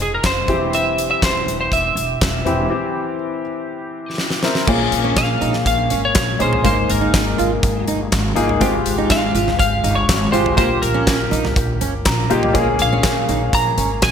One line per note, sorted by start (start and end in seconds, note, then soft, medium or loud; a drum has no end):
0.00 0.19 F1 medium
0.00 0.51 D#4 medium
0.00 0.51 F4 medium
0.00 0.51 G#4 medium
0.00 0.13 G#4 medium
0.14 0.25 A#4 medium
0.24 0.44 F1 medium
0.24 0.76 C5 medium
0.24 kick loud
0.24 snare medium
0.24 clap medium
0.24 closed hi-hat medium
0.48 1.09 E1 medium
0.48 1.19 E3 medium
0.48 1.27 C4 medium
0.48 1.27 E4 medium
0.48 1.28 G4 medium
0.48 kick medium
0.48 closed hi-hat soft
0.73 1.08 E5 medium
0.73 closed hi-hat medium
0.98 closed hi-hat medium
1.11 1.22 E5 medium
1.22 1.43 E1 medium
1.22 1.58 C5 medium
1.22 kick loud
1.22 snare medium
1.22 clap medium
1.22 closed hi-hat medium
1.46 1.67 E1 medium
1.46 closed hi-hat medium
1.60 1.71 C5 medium
1.72 1.92 E1 medium
1.72 4.15 E5 medium
1.72 kick medium
1.72 closed hi-hat medium
1.96 2.16 E1 medium
1.96 closed hi-hat medium
2.21 2.41 E1 medium
2.21 kick loud
2.21 snare loud
2.21 clap medium
2.21 closed hi-hat medium
2.45 2.66 E1 medium
2.45 3.16 E3 medium
2.45 2.63 C4 medium
2.45 2.63 E4 medium
2.45 2.64 G4 medium
2.45 closed hi-hat soft
2.70 3.40 C4 medium
2.70 3.41 E4 medium
2.70 3.41 G4 medium
4.18 snare medium
4.30 snare medium
4.43 4.61 C4 medium
4.43 4.61 E4 medium
4.43 4.61 A#4 medium
4.43 snare medium
4.55 snare medium
4.67 4.88 A#1 medium
4.67 5.38 A#2 medium
4.67 4.79 A#3 loud
4.67 5.38 A#3 medium
4.67 5.38 C#4 medium
4.67 5.38 G#4 medium
4.67 kick loud
4.67 crash loud
4.92 5.12 A#1 medium
4.92 closed hi-hat medium
5.04 5.28 C#4 medium
5.16 5.37 A#1 loud
5.16 5.66 F5 loud
5.16 kick loud
5.16 snare loud
5.16 clap medium
5.16 closed hi-hat medium
5.41 5.62 A#1 medium
5.41 5.53 D#4 medium
5.41 closed hi-hat medium
5.53 snare soft
5.66 5.86 A#1 medium
5.66 6.01 F5 medium
5.66 kick loud
5.66 closed hi-hat medium
5.90 6.11 G#1 medium
5.90 6.02 C#4 medium
5.90 closed hi-hat medium
6.05 6.38 C#5 loud
6.15 6.35 A#1 loud
6.15 kick loud
6.15 snare loud
6.15 clap medium
6.15 closed hi-hat loud
6.39 6.60 A#1 loud
6.39 6.57 A#3 medium
6.39 6.57 C#4 medium
6.39 6.52 D#4 medium
6.39 6.57 G#4 medium
6.39 6.63 C5 medium
6.39 closed hi-hat medium
6.53 floor tom medium
6.64 6.85 G#1 medium
6.64 7.34 G#2 medium
6.64 7.34 A#3 medium
6.64 6.76 A#3 medium
6.64 7.35 D#4 medium
6.64 7.35 G#4 medium
6.64 6.90 C5 medium
6.64 kick loud
6.64 closed hi-hat medium
6.90 7.10 G#1 loud
6.90 7.84 A#4 medium
6.90 closed hi-hat medium
7.01 7.24 D#4 medium
7.14 7.34 G#1 loud
7.14 kick loud
7.14 snare loud
7.14 clap medium
7.14 closed hi-hat medium
7.38 7.59 G#1 loud
7.38 7.50 F4 medium
7.38 closed hi-hat medium
7.63 7.83 G#1 medium
7.63 kick loud
7.63 closed hi-hat medium
7.88 8.08 G1 medium
7.88 7.99 D#4 medium
7.88 closed hi-hat medium
8.12 8.32 G#1 loud
8.12 kick loud
8.12 snare loud
8.12 clap medium
8.12 closed hi-hat medium
8.35 8.57 G#1 loud
8.35 8.54 A#3 medium
8.35 8.54 D#4 medium
8.35 8.48 F4 medium
8.35 8.54 G#4 loud
8.35 closed hi-hat medium
8.49 floor tom medium
8.60 8.81 G#1 loud
8.60 9.30 G#2 medium
8.60 9.31 G#3 medium
8.60 8.73 C4 loud
8.60 9.31 F4 medium
8.60 9.32 G4 medium
8.60 kick medium
8.60 closed hi-hat medium
8.86 9.06 G#1 medium
8.86 closed hi-hat medium
8.98 9.21 D#4 medium
9.10 9.30 G#1 loud
9.10 9.57 F5 loud
9.10 kick loud
9.10 snare loud
9.10 clap medium
9.10 closed hi-hat medium
9.34 9.55 G#1 medium
9.34 9.46 F4 medium
9.34 closed hi-hat medium
9.48 snare soft
9.48 floor tom medium
9.59 9.80 G#1 medium
9.59 9.97 F5 loud
9.59 kick loud
9.59 closed hi-hat medium
9.84 10.04 G1 loud
9.84 9.96 D#4 medium
9.84 closed hi-hat medium
9.95 10.30 C#5 medium
10.09 10.29 G#1 loud
10.09 kick loud
10.09 snare loud
10.09 clap medium
10.09 closed hi-hat loud
10.32 10.53 G#1 loud
10.32 10.50 G#3 medium
10.32 10.50 F4 medium
10.32 10.45 F4 medium
10.32 10.50 G4 medium
10.32 10.55 C5 medium
10.32 closed hi-hat medium
10.46 floor tom medium
10.56 10.78 A#1 loud
10.56 11.27 A#2 medium
10.56 11.27 A#3 medium
10.56 10.69 A#3 loud
10.56 11.28 F4 medium
10.56 11.28 G4 medium
10.56 10.80 C5 medium
10.56 kick loud
10.56 closed hi-hat medium
10.82 11.03 A#1 medium
10.82 11.77 A#4 medium
10.82 closed hi-hat medium
10.94 11.18 C#4 medium
11.07 11.27 A#1 medium
11.07 kick loud
11.07 snare loud
11.07 clap medium
11.07 closed hi-hat medium
11.31 11.52 A#1 loud
11.31 11.43 D#4 medium
11.31 closed hi-hat medium
11.44 snare soft
11.44 floor tom medium
11.56 11.76 A#1 loud
11.56 kick loud
11.56 closed hi-hat medium
11.81 12.01 G1 medium
11.81 11.93 C#4 medium
11.81 closed hi-hat medium
12.05 12.26 A#1 loud
12.05 12.29 A#5 medium
12.05 kick loud
12.05 snare loud
12.05 clap loud
12.05 closed hi-hat medium
12.30 12.51 A#1 medium
12.30 12.47 A#3 medium
12.30 12.42 D#4 medium
12.30 12.48 F4 medium
12.30 12.48 G4 loud
12.30 12.53 D#5 medium
12.30 closed hi-hat medium
12.43 floor tom medium
12.53 12.75 A#1 medium
12.53 13.24 A#2 medium
12.53 13.24 A#3 medium
12.53 12.67 A#3 medium
12.53 13.25 C#4 medium
12.53 13.25 G#4 loud
12.53 kick loud
12.53 closed hi-hat medium
12.79 13.00 A#1 loud
12.79 13.56 F5 medium
12.79 closed hi-hat medium
12.92 13.15 C#4 medium
13.03 13.24 A#1 medium
13.03 kick loud
13.03 snare loud
13.03 clap medium
13.03 closed hi-hat medium
13.29 13.49 A#1 medium
13.29 13.40 D#4 medium
13.29 closed hi-hat medium
13.53 13.73 A#1 medium
13.53 14.04 A#5 medium
13.53 kick loud
13.53 closed hi-hat medium
13.78 13.98 G#1 medium
13.78 13.89 C#4 medium
13.78 closed hi-hat medium
14.02 14.11 A#1 loud
14.02 14.11 G#5 loud
14.02 kick loud
14.02 snare loud
14.02 clap medium
14.02 closed hi-hat medium